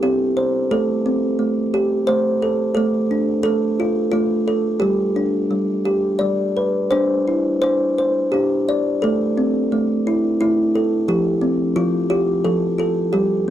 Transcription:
0, 0, Header, 1, 2, 480
1, 0, Start_track
1, 0, Key_signature, 0, "major"
1, 0, Tempo, 683371
1, 503, Time_signature, 3, 2, 24, 8
1, 3864, Tempo, 706714
1, 6264, Tempo, 684151
1, 9398, End_track
2, 0, Start_track
2, 0, Title_t, "Kalimba"
2, 0, Program_c, 0, 108
2, 0, Note_on_c, 0, 64, 53
2, 19, Note_on_c, 0, 67, 82
2, 23, Note_on_c, 0, 60, 62
2, 258, Note_on_c, 0, 72, 69
2, 264, Note_off_c, 0, 64, 0
2, 473, Note_off_c, 0, 67, 0
2, 500, Note_off_c, 0, 72, 0
2, 500, Note_on_c, 0, 57, 66
2, 501, Note_on_c, 0, 69, 82
2, 503, Note_off_c, 0, 60, 0
2, 743, Note_on_c, 0, 60, 61
2, 968, Note_off_c, 0, 57, 0
2, 976, Note_on_c, 0, 57, 56
2, 1222, Note_on_c, 0, 67, 77
2, 1455, Note_on_c, 0, 72, 90
2, 1457, Note_off_c, 0, 57, 0
2, 1466, Note_on_c, 0, 57, 64
2, 1491, Note_off_c, 0, 69, 0
2, 1703, Note_off_c, 0, 60, 0
2, 1703, Note_on_c, 0, 69, 73
2, 1920, Note_off_c, 0, 69, 0
2, 1929, Note_on_c, 0, 69, 80
2, 1936, Note_off_c, 0, 57, 0
2, 1941, Note_off_c, 0, 67, 0
2, 1945, Note_on_c, 0, 57, 75
2, 1952, Note_off_c, 0, 72, 0
2, 2184, Note_on_c, 0, 62, 60
2, 2403, Note_off_c, 0, 69, 0
2, 2411, Note_on_c, 0, 69, 94
2, 2419, Note_off_c, 0, 57, 0
2, 2427, Note_on_c, 0, 57, 60
2, 2667, Note_on_c, 0, 65, 88
2, 2882, Note_off_c, 0, 65, 0
2, 2891, Note_on_c, 0, 65, 83
2, 2895, Note_off_c, 0, 57, 0
2, 2903, Note_on_c, 0, 57, 64
2, 2914, Note_off_c, 0, 69, 0
2, 3144, Note_on_c, 0, 69, 76
2, 3145, Note_off_c, 0, 62, 0
2, 3369, Note_on_c, 0, 67, 84
2, 3382, Note_off_c, 0, 57, 0
2, 3383, Note_off_c, 0, 69, 0
2, 3385, Note_on_c, 0, 55, 74
2, 3390, Note_off_c, 0, 65, 0
2, 3626, Note_on_c, 0, 62, 61
2, 3860, Note_off_c, 0, 55, 0
2, 3868, Note_on_c, 0, 55, 57
2, 4096, Note_off_c, 0, 67, 0
2, 4104, Note_on_c, 0, 67, 75
2, 4331, Note_on_c, 0, 74, 82
2, 4338, Note_off_c, 0, 55, 0
2, 4346, Note_on_c, 0, 55, 55
2, 4585, Note_off_c, 0, 62, 0
2, 4587, Note_on_c, 0, 71, 71
2, 4794, Note_off_c, 0, 74, 0
2, 4818, Note_on_c, 0, 72, 88
2, 4827, Note_on_c, 0, 62, 73
2, 4828, Note_off_c, 0, 55, 0
2, 4828, Note_off_c, 0, 67, 0
2, 4828, Note_off_c, 0, 71, 0
2, 5069, Note_on_c, 0, 64, 57
2, 5278, Note_off_c, 0, 72, 0
2, 5301, Note_on_c, 0, 72, 86
2, 5305, Note_off_c, 0, 62, 0
2, 5313, Note_on_c, 0, 62, 57
2, 5542, Note_off_c, 0, 72, 0
2, 5551, Note_on_c, 0, 72, 76
2, 5777, Note_on_c, 0, 67, 79
2, 5783, Note_off_c, 0, 62, 0
2, 5791, Note_on_c, 0, 62, 58
2, 6027, Note_on_c, 0, 74, 77
2, 6028, Note_off_c, 0, 64, 0
2, 6230, Note_off_c, 0, 67, 0
2, 6254, Note_on_c, 0, 69, 84
2, 6263, Note_off_c, 0, 74, 0
2, 6264, Note_off_c, 0, 62, 0
2, 6264, Note_off_c, 0, 72, 0
2, 6267, Note_on_c, 0, 57, 71
2, 6503, Note_on_c, 0, 60, 65
2, 6738, Note_off_c, 0, 57, 0
2, 6746, Note_on_c, 0, 57, 62
2, 6990, Note_on_c, 0, 64, 71
2, 7218, Note_off_c, 0, 64, 0
2, 7224, Note_off_c, 0, 57, 0
2, 7226, Note_on_c, 0, 64, 81
2, 7232, Note_on_c, 0, 57, 58
2, 7256, Note_off_c, 0, 69, 0
2, 7469, Note_off_c, 0, 60, 0
2, 7471, Note_on_c, 0, 69, 70
2, 7675, Note_off_c, 0, 64, 0
2, 7701, Note_on_c, 0, 53, 69
2, 7704, Note_on_c, 0, 67, 78
2, 7706, Note_off_c, 0, 57, 0
2, 7706, Note_off_c, 0, 69, 0
2, 7933, Note_on_c, 0, 60, 64
2, 8170, Note_off_c, 0, 53, 0
2, 8176, Note_on_c, 0, 65, 86
2, 8178, Note_on_c, 0, 53, 63
2, 8190, Note_off_c, 0, 67, 0
2, 8407, Note_off_c, 0, 65, 0
2, 8414, Note_on_c, 0, 67, 77
2, 8415, Note_on_c, 0, 65, 79
2, 8652, Note_off_c, 0, 53, 0
2, 8657, Note_on_c, 0, 69, 76
2, 8660, Note_on_c, 0, 53, 64
2, 8664, Note_off_c, 0, 67, 0
2, 8883, Note_off_c, 0, 69, 0
2, 8886, Note_off_c, 0, 65, 0
2, 8894, Note_on_c, 0, 65, 61
2, 8896, Note_off_c, 0, 60, 0
2, 8903, Note_on_c, 0, 69, 70
2, 9122, Note_off_c, 0, 65, 0
2, 9135, Note_on_c, 0, 67, 77
2, 9142, Note_on_c, 0, 55, 72
2, 9143, Note_off_c, 0, 69, 0
2, 9144, Note_off_c, 0, 53, 0
2, 9398, Note_off_c, 0, 55, 0
2, 9398, Note_off_c, 0, 67, 0
2, 9398, End_track
0, 0, End_of_file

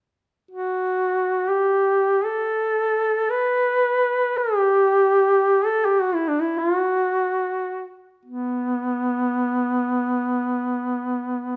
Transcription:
0, 0, Header, 1, 2, 480
1, 0, Start_track
1, 0, Tempo, 500000
1, 11101, End_track
2, 0, Start_track
2, 0, Title_t, "Duduk"
2, 0, Program_c, 0, 69
2, 492, Note_on_c, 0, 66, 61
2, 1432, Note_on_c, 0, 67, 74
2, 1447, Note_off_c, 0, 66, 0
2, 2162, Note_on_c, 0, 69, 67
2, 2177, Note_off_c, 0, 67, 0
2, 3167, Note_on_c, 0, 71, 78
2, 3182, Note_off_c, 0, 69, 0
2, 4203, Note_on_c, 0, 67, 81
2, 4217, Note_off_c, 0, 71, 0
2, 5432, Note_on_c, 0, 69, 77
2, 5446, Note_off_c, 0, 67, 0
2, 5618, Note_on_c, 0, 67, 74
2, 5633, Note_off_c, 0, 69, 0
2, 5774, Note_on_c, 0, 66, 66
2, 5789, Note_off_c, 0, 67, 0
2, 5902, Note_on_c, 0, 64, 68
2, 5916, Note_off_c, 0, 66, 0
2, 6035, Note_on_c, 0, 62, 65
2, 6049, Note_off_c, 0, 64, 0
2, 6159, Note_on_c, 0, 64, 65
2, 6174, Note_off_c, 0, 62, 0
2, 6322, Note_on_c, 0, 65, 72
2, 6337, Note_off_c, 0, 64, 0
2, 6495, Note_off_c, 0, 65, 0
2, 6495, Note_on_c, 0, 66, 72
2, 7608, Note_off_c, 0, 66, 0
2, 7928, Note_on_c, 0, 59, 63
2, 11101, Note_off_c, 0, 59, 0
2, 11101, End_track
0, 0, End_of_file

